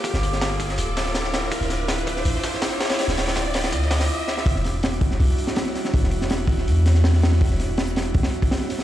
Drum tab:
HH |o---o---o---o---o---o---o---o---|o---o---o-x-o---o---o---o---o-o-|o-o-o-o-o---o-o-o---o-o---------|o---o---o-x-o---o---o---o---o---|
TB |x---x---x---x---x---x---x---x---|x---x---x---x---x---x---x---xxxx|x---x---x---x---x---x-----------|--------------------------------|
SD |--o---o-o-----o-----o-o-o-o-o-o-|--o-o---o-----o---o-o-o-o-o-oooo|o-o-o-o-o---o-o---o-o-o-----o-o-|--o-o---o-----o-------o-o-o-o-o-|
BD |o-----------o-------------------|o-----------o-------o-----------|----------------o---------------|o-----------o-------------------|

HH |o---o---o---o---o---o---o---o---|o---o---o-x-o-x-o-o-x-o-o---o---|
TB |--------------------------------|--------------------------------|
SD |--o---o-o-----o-----o-o-o-o-o-o-|--o-o---o---o-----o-----o-o-o-o-|
BD |o-----------o-------------------|o---------------o-----o---------|